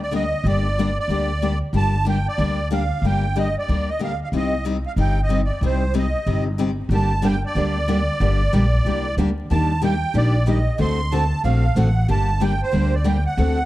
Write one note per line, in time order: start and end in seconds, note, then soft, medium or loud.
0.00 0.32 D2 medium
0.00 0.13 D5 medium
0.11 0.22 D3 medium
0.11 0.23 G3 medium
0.11 0.23 A#3 medium
0.11 0.23 D4 medium
0.11 0.23 G4 medium
0.11 0.47 D#5 medium
0.44 0.96 G1 medium
0.44 0.65 D3 medium
0.44 0.65 G3 medium
0.44 0.65 A#3 medium
0.44 0.66 D4 medium
0.44 0.66 G4 medium
0.44 0.98 D5 medium
0.78 0.88 D3 medium
0.78 0.89 G3 medium
0.78 0.89 A#3 loud
0.78 0.89 D4 loud
0.78 0.89 G4 loud
1.00 1.59 D5 medium
1.08 1.60 D2 medium
1.08 1.29 D3 medium
1.08 1.29 G3 medium
1.08 1.30 A#3 medium
1.08 1.30 D4 medium
1.08 1.30 G4 medium
1.42 1.53 D3 medium
1.42 1.53 G3 medium
1.42 1.53 A#3 medium
1.42 1.53 D4 medium
1.42 1.53 G4 medium
1.73 2.25 G1 medium
1.73 1.94 D3 medium
1.73 1.94 G3 medium
1.73 1.94 A#3 medium
1.73 1.94 D4 medium
1.73 1.94 G4 medium
1.73 2.05 A5 loud
2.05 2.16 D3 medium
2.05 2.17 G3 medium
2.05 2.17 A#3 medium
2.05 2.17 D4 medium
2.05 2.17 G4 medium
2.05 2.27 G5 medium
2.28 2.69 D5 medium
2.38 2.90 D2 medium
2.38 2.58 D3 medium
2.38 2.58 G3 medium
2.38 2.59 A#3 medium
2.38 2.59 D4 medium
2.38 2.59 G4 medium
2.71 2.81 D3 medium
2.71 2.82 G3 medium
2.71 2.82 A#3 medium
2.71 2.82 D4 medium
2.71 2.82 G4 loud
2.71 3.05 F5 medium
3.02 3.54 G1 medium
3.02 3.24 D3 medium
3.02 3.24 G3 medium
3.02 3.24 A#3 medium
3.02 3.24 D4 medium
3.06 3.25 G4 medium
3.06 3.38 G5 medium
3.36 3.46 D3 medium
3.36 3.46 G3 medium
3.36 3.47 A#3 medium
3.36 3.47 D4 loud
3.36 3.47 G4 medium
3.36 3.55 D#5 medium
3.59 3.90 D5 medium
3.68 4.20 D2 medium
3.68 3.88 D3 medium
3.68 3.88 G3 medium
3.68 3.88 A#3 medium
3.68 3.88 D4 medium
3.68 3.89 G4 medium
3.89 4.01 D#5 medium
3.99 4.10 D3 medium
3.99 4.11 G3 medium
3.99 4.11 A#3 medium
3.99 4.11 D4 medium
3.99 4.11 G4 medium
4.04 4.20 F5 medium
4.24 4.29 F5 medium
4.32 4.84 C2 medium
4.32 4.53 C3 medium
4.32 4.53 G3 medium
4.32 4.53 C4 medium
4.32 4.53 D#4 medium
4.32 4.53 G4 medium
4.36 4.65 D#5 medium
4.65 4.76 C3 medium
4.65 4.76 G3 medium
4.65 4.76 C4 medium
4.65 4.76 D#4 medium
4.65 4.76 G4 medium
4.87 4.92 F5 medium
4.96 5.48 G1 medium
4.96 5.17 C3 medium
4.96 5.17 G3 medium
4.96 5.17 C4 medium
4.96 5.17 D#4 medium
4.96 5.18 G4 medium
5.00 5.21 G5 medium
5.23 5.41 D#5 medium
5.29 5.40 C3 medium
5.29 5.40 G3 medium
5.29 5.40 C4 medium
5.29 5.41 D#4 medium
5.29 5.41 G4 medium
5.45 5.63 D5 medium
5.61 6.13 C2 medium
5.61 5.82 C3 medium
5.61 5.82 G3 medium
5.61 5.82 C4 medium
5.61 5.83 D#4 medium
5.61 5.82 G4 medium
5.65 5.94 C5 medium
5.94 6.05 C3 medium
5.94 6.05 G3 medium
5.94 6.05 C4 loud
5.94 6.05 D#4 medium
5.94 6.05 G4 medium
5.98 6.44 D#5 medium
6.26 6.78 G1 medium
6.26 6.46 C3 medium
6.26 6.46 G3 medium
6.26 6.47 C4 medium
6.26 6.47 D#4 medium
6.26 6.47 G4 medium
6.58 6.69 C3 medium
6.58 6.69 G3 medium
6.58 6.70 C4 medium
6.58 6.70 D#4 loud
6.58 6.70 G4 medium
6.89 7.42 G1 medium
6.89 7.11 D3 medium
6.89 7.11 G3 medium
6.89 7.11 A#3 medium
6.89 7.11 D4 medium
6.89 7.11 G4 medium
6.95 7.26 A5 medium
7.22 7.33 D3 medium
7.22 7.34 G3 medium
7.22 7.34 A#3 medium
7.22 7.34 D4 loud
7.22 7.34 G4 medium
7.22 7.43 G5 medium
7.46 9.15 D5 medium
7.55 8.07 D2 medium
7.55 7.75 D3 medium
7.55 7.76 G3 medium
7.55 7.76 A#3 medium
7.55 7.76 D4 medium
7.55 7.76 G4 medium
7.88 7.99 D3 medium
7.88 7.99 G3 medium
7.88 7.99 A#3 medium
7.88 7.99 D4 medium
7.88 7.99 G4 medium
8.20 8.46 G1 medium
8.20 8.41 D3 medium
8.20 8.41 G3 medium
8.20 8.41 A#3 medium
8.20 8.41 D4 medium
8.20 8.41 G4 medium
8.53 8.80 A#1 medium
8.53 8.63 D3 medium
8.53 8.64 G3 medium
8.53 8.64 A#3 medium
8.53 8.64 D4 medium
8.53 8.64 G4 medium
8.85 9.12 C2 medium
8.85 9.06 D3 medium
8.85 9.06 G3 medium
8.85 9.06 A#3 medium
8.85 9.06 D4 medium
8.85 9.06 G4 medium
9.16 9.44 D2 medium
9.16 9.29 D3 medium
9.16 9.29 G3 medium
9.16 9.29 A#3 medium
9.16 9.29 D4 medium
9.16 9.29 G4 medium
9.50 10.02 D#2 medium
9.50 9.70 D#3 medium
9.50 9.70 G3 medium
9.50 9.70 A#3 medium
9.50 9.71 D4 medium
9.50 9.71 G4 medium
9.50 9.81 A5 medium
9.82 9.93 D#3 medium
9.82 9.93 G3 medium
9.82 9.93 A#3 medium
9.82 9.93 D4 medium
9.82 9.93 G4 loud
9.82 10.16 G5 medium
10.14 10.66 A#1 medium
10.14 10.34 D#3 medium
10.14 10.35 G3 medium
10.14 10.35 A#3 medium
10.14 10.35 D4 medium
10.14 10.35 G4 medium
10.14 10.46 D5 medium
10.46 10.57 D#3 medium
10.46 10.58 G3 medium
10.46 10.58 A#3 medium
10.46 10.58 D4 medium
10.46 10.58 G4 medium
10.46 10.78 D#5 medium
10.78 11.31 D2 medium
10.78 10.99 D3 medium
10.78 10.99 A3 medium
10.78 10.99 C4 medium
10.78 10.99 F#4 medium
10.78 10.99 A4 medium
10.78 11.13 C6 loud
11.12 11.23 D3 medium
11.12 11.23 A3 medium
11.12 11.23 C4 medium
11.12 11.23 F#4 loud
11.12 11.23 A4 medium
11.12 11.42 A5 loud
11.44 11.71 A#1 medium
11.44 11.64 D3 medium
11.44 11.64 A3 medium
11.44 11.64 C4 medium
11.44 11.65 F#4 medium
11.44 11.65 A4 medium
11.44 11.78 F5 medium
11.75 12.03 A1 medium
11.75 11.87 D3 medium
11.75 11.87 A3 medium
11.75 11.87 C4 medium
11.75 11.88 F#4 medium
11.75 11.88 A4 medium
11.75 12.07 F#5 medium
12.08 12.60 G1 medium
12.08 12.29 D3 medium
12.08 12.28 G3 medium
12.08 12.29 A#3 medium
12.08 12.29 D4 medium
12.08 12.29 G4 medium
12.08 12.43 A5 loud
12.40 12.51 D3 medium
12.40 12.52 G3 medium
12.40 12.52 A#3 loud
12.40 12.52 D4 medium
12.40 12.52 G4 medium
12.40 12.61 G5 medium
12.63 12.95 C5 medium
12.71 13.25 D2 medium
12.71 12.92 D3 medium
12.71 12.93 G3 medium
12.71 12.93 A#3 medium
12.71 12.93 D4 medium
12.71 12.93 G4 medium
12.94 13.07 D5 medium
13.04 13.16 D3 medium
13.04 13.16 G3 medium
13.04 13.16 A#3 loud
13.04 13.16 D4 medium
13.04 13.16 G4 medium
13.04 13.24 G5 medium
13.26 13.65 F#5 medium
13.37 13.65 D2 medium
13.37 13.58 D3 medium
13.37 13.58 A3 medium
13.37 13.58 C4 medium
13.37 13.58 F#4 medium
13.37 13.58 A4 medium